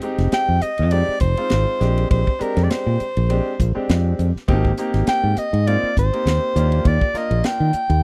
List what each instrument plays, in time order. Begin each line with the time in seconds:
0.02 grand piano G#3 C4 D#4 G4, hi-hat pedal, ride
0.18 fingered electric bass F1, snare, ride
0.32 soprano saxophone G5, snare, ride
0.48 fingered electric bass F2
0.61 soprano saxophone D#5, muted fingered electric bass stroke, hi-hat pedal, ride
0.78 fingered electric bass F2, ride
0.91 grand piano G#3 C4 D#4 G4, soprano saxophone D5, ride
1.08 muted fingered electric bass stroke
1.20 fingered electric bass F1, grand piano D#4 G4, soprano saxophone C5, kick, hi-hat pedal, ride
1.37 grand piano G#3 C4 D#4 F4, ride
1.50 fingered electric bass G#1, snare, ride
1.80 fingered electric bass A#1, grand piano G#3 C4 D4 G4, snare, hi-hat pedal, ride
1.98 ride
2.11 fingered electric bass A#1, soprano saxophone C5, kick, ride
2.27 kick
2.39 grand piano G#3 C4 D4 G4, soprano saxophone A#4, muted fingered electric bass stroke, hi-hat pedal, ride
2.57 fingered electric bass F2, snare, ride
2.63 soprano saxophone D5
2.70 soprano saxophone C5, snare, ride
2.86 fingered electric bass A#2
3.00 muted fingered electric bass stroke, hi-hat pedal, ride
3.17 fingered electric bass A#1, ride
3.29 grand piano G#3 C4 D4 G4, ride
3.59 fingered electric bass A#1, grand piano D4 F4, kick, hi-hat pedal, ride
3.75 grand piano G#3 C4 D4 G4, muted fingered electric bass stroke
3.89 fingered electric bass F2, snare, ride
4.19 fingered electric bass F2, hi-hat pedal, ride
4.35 muted fingered electric bass stroke, snare
4.48 fingered electric bass G#1, grand piano A#3 C4 D#4 G4, kick, ride
4.65 kick
4.77 grand piano A#3 C4 D#4 G4, hi-hat pedal, ride
4.94 fingered electric bass G#1, snare, ride
5.07 soprano saxophone G5, snare, ride
5.23 fingered electric bass G#2
5.37 soprano saxophone D#5, muted fingered electric bass stroke, hi-hat pedal, ride
5.53 fingered electric bass G#2, ride
5.67 grand piano A#3 C4 D#4 F4, soprano saxophone D5, ride
5.83 muted fingered electric bass stroke
5.97 fingered electric bass G#1, grand piano D#4 G4, soprano saxophone C5, kick, hi-hat pedal, ride
6.13 grand piano A#3 C4 D#4 G4, ride
6.26 fingered electric bass D#2, snare, ride
6.56 fingered electric bass D#2, grand piano A#3 D4 F4 G4, hi-hat pedal, ride
6.72 ride
6.85 fingered electric bass D#2, soprano saxophone D5, kick, ride
7.01 kick
7.14 grand piano A#3 D4 F4 A#4, soprano saxophone D#5, muted fingered electric bass stroke, snare, hi-hat pedal, ride
7.31 fingered electric bass A#1, ride
7.44 soprano saxophone G5, snare, ride
7.60 fingered electric bass D#3
7.73 muted fingered electric bass stroke, hi-hat pedal, ride
7.89 fingered electric bass D#2, ride